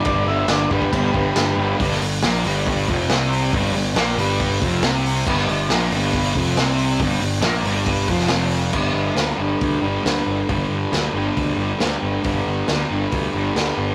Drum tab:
CC |x---x---x---x---|----------------|----------------|x---------------|
HH |----------------|o-o-o-o-o-o-o-o-|o-o-o-o-o-o-o-o-|--o-o-o-o-o-o-o-|
SD |----o-------o---|-o--o-------o---|----o-------o---|-o--o-------o---|
BD |o-----ooo-o-----|o-------o-o-----|o-------o-o-----|o-------o-o-----|

CC |----------------|x---------------|----------------|----------------|
HH |o-o-o-o-o-o-o-o-|----o---o---o---|o---o---o---o---|o---o---o---o---|
SD |----o------oo---|----o-------o---|----o-------o---|----o-------o---|
BD |o-------o-o-----|o-------o-------|o-------o-------|o-------o-------|